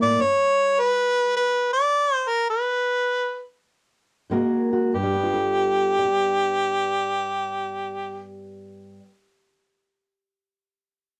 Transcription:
Already playing: steel-string acoustic guitar G3 A#3 E4 A#4
0.02 steel-string acoustic guitar A2, harmonica D5
0.21 steel-string acoustic guitar G2, harmonica C#5
0.80 harmonica B4
1.37 harmonica B4
1.73 harmonica D5
2.15 harmonica C5
2.28 harmonica A#4
2.50 harmonica B4
4.30 steel-string acoustic guitar G#2 G#3 A#3 F#4 A#4
4.73 steel-string acoustic guitar F#4
4.94 steel-string acoustic guitar G2, harmonica G4
5.03 steel-string acoustic guitar G3
5.14 steel-string acoustic guitar B3
5.24 steel-string acoustic guitar F4
5.34 steel-string acoustic guitar A4
5.99 steel-string acoustic guitar D5
6.05 steel-string acoustic guitar G5

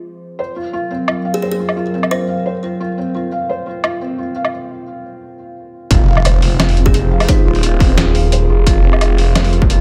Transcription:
Already playing: analog synth pad F4 G#4 C5
0.39 analog synth pad F#3 A#4, felt piano C5
0.56 felt piano F4
0.73 felt piano F4
0.90 felt piano C4
1.08 felt piano F4, low woodblock
1.25 felt piano F5
1.34 kalimba G#4
1.42 kalimba G#4, felt piano C5
1.52 kalimba G#4
1.59 felt piano F4
1.69 low woodblock
1.77 felt piano F4
1.94 felt piano C4
2.03 low woodblock
2.11 felt piano F4, kalimba C5, low woodblock
2.28 felt piano F5
2.46 felt piano C5
2.63 felt piano F4
2.80 felt piano F4
2.98 felt piano C4
3.15 felt piano F4
3.32 felt piano F5
3.49 felt piano C5
3.67 felt piano F4
3.84 felt piano F4, low woodblock
4.01 felt piano C4
4.18 felt piano F4
4.35 felt piano F5
4.45 low woodblock
5.90 detuned saw bass F1, analog synth pad F4, felt piano F4, kick, closed hi-hat, impact
5.98 analog synth pad G#4
6.08 felt piano F5
6.17 analog synth pad C5, low woodblock
6.25 felt piano C5, closed hi-hat, low woodblock
6.42 felt piano F4, open hi-hat
6.60 felt piano F4, snare, closed hi-hat, low woodblock
6.69 open hi-hat
6.77 felt piano C4, closed hi-hat
6.86 kalimba G#4, kick
6.94 detuned saw bass F1, felt piano F4, kalimba G#4, closed hi-hat
7.11 felt piano F5
7.20 open hi-hat, low woodblock
7.28 kalimba D#4, felt piano C5, kick, closed hi-hat
7.46 detuned saw bass D#1, felt piano F4
7.55 open hi-hat
7.63 felt piano F4, closed hi-hat
7.80 felt piano C4, kick, open hi-hat
7.98 felt piano F4, snare, closed hi-hat
8.15 felt piano F5, open hi-hat
8.32 felt piano C5, closed hi-hat
8.49 detuned saw bass F1, felt piano F4
8.64 detuned saw bass F1, felt piano F4, analog synth pad A#4, kick, closed hi-hat
8.83 felt piano C4
8.93 low woodblock
9.01 felt piano F4, closed hi-hat, low woodblock
9.18 felt piano F5, open hi-hat
9.35 felt piano C5, snare, closed hi-hat, low woodblock
9.45 open hi-hat
9.53 felt piano F4, closed hi-hat
9.62 kick
9.70 detuned saw bass F1, felt piano F4, closed hi-hat

